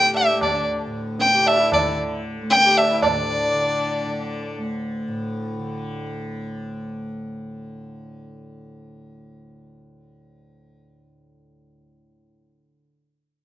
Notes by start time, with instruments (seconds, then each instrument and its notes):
Already playing: tanpura D2 A2 D3, violin G5
0.01 sarangi G4
0.14 violin E5, tabla na
0.34 tanpura D2
0.41 violin D5, tabla na, tabla ge
0.54 sarangi D4
0.86 tanpura A2
1.19 violin G5, tabla te
1.33 sarangi G4
1.39 tanpura D3
1.46 violin E5, tabla na
1.59 sarangi E4
1.72 violin D5, tabla na, tabla ge
1.90 tanpura D3
2.41 tanpura D2
2.50 violin G5, tabla te
2.65 sarangi G4
2.77 violin E5, tabla na
2.92 sarangi E4
3.02 tanpura A2, violin D5, tabla na, tabla ge
3.16 sarangi D4
3.54 tanpura D3
4.06 tanpura D3
4.58 tanpura D2
5.08 tanpura A2
5.59 tanpura D3